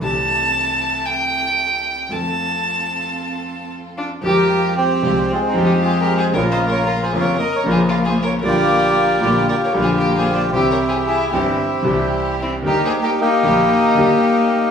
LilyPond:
<<
  \new Staff \with { instrumentName = "Bandoneon" } { \time 4/4 \key f \major \tempo 4 = 114 << { r1 | r2. r8 f'8 | \key f \minor bes'4 g'4 \tuplet 3/2 { f'8 ees'8 g'8 aes'8 bes'8 c''8 } | \tuplet 3/2 { des''8 ees''8 des''8 bes'8 c''8 des''8 ees''8 des''8 c''8 bes'8 c''8 des''8 } |
d''2 \tuplet 3/2 { d''8 des''8 c''8 bes'8 c''8 d''8 } | \tuplet 3/2 { c''8 des''8 c''8 } aes'8 g'4. r8 e'8 | \tuplet 3/2 { bes'8 c''8 bes'8 } g'2. | } \\ { r1 | r1 | g'4 c'4 <aes c'>2 | <f' bes'>2 bes'2 |
<f' g'>2 <f' g'>2 | <e' g'>4. <c' e'>2 r8 | <ees' g'>4 <bes ees'>2. | } >> }
  \new Staff \with { instrumentName = "Violin" } { \time 4/4 \key f \major a''2 g''2 | a''2. r8 d'8 | \key f \minor g'4 c'4 \tuplet 3/2 { c'8 c'8 ees'8 f'8 g'8 aes'8 } | \tuplet 3/2 { bes'8 c''8 bes'8 f'8 aes'8 bes'8 bes'8 bes'8 aes'8 f'8 aes'8 bes'8 } |
bes'2 \tuplet 3/2 { bes'8 bes'8 aes'8 g'8 aes'8 c''8 } | \tuplet 3/2 { g'8 bes'8 aes'8 } e'8 e'4. r8 c'8 | \tuplet 3/2 { g'8 aes'8 g'8 } ees'2. | }
  \new Staff \with { instrumentName = "String section" } { \time 4/4 \key f \major <c' e' a'>1 | <c' f' a'>1 | \key f \minor <aes f' g'>4. <aes f' g'>8 r8 <aes f' g'>4. | <bes des' f'>4. <bes des' f'>8 r8 <bes des' f'>4. |
<bes f' g'>4. <bes f' g'>8 r8 <bes f' g'>4. | <c' e' g'>4. <c' e' g'>8 r8 <c' e' g'>4. | <bes ees' g'>4. <bes ees' g'>8 r8 <bes ees' g'>4. | }
  \new Staff \with { instrumentName = "Grand piano" } { \clef bass \time 4/4 \key f \major <c, c e a c' g'>1 | <f, f a c' a'>1 | \key f \minor <f, f aes c' g'>4. <c, c f aes c' g'>8 r8 <f, f aes c' g'>4. | <bes,, bes, des f bes f'>4. <f,, f, des f bes f'>8 r8 <bes,, bes, des f bes f'>4. |
<bes,, bes, d g bes f'>4. <bes,, bes, d g bes f'>8 r8 <bes,, bes, d g bes f'>4. | <c, c e g c' g'>4. <g,, g, e g c' g'>8 r8 <c, c e g c' g'>4. | <ees, ees g bes g'>4. <bes,, bes, ees g bes g'>8 r8 <ees, ees g bes g'>4. | }
>>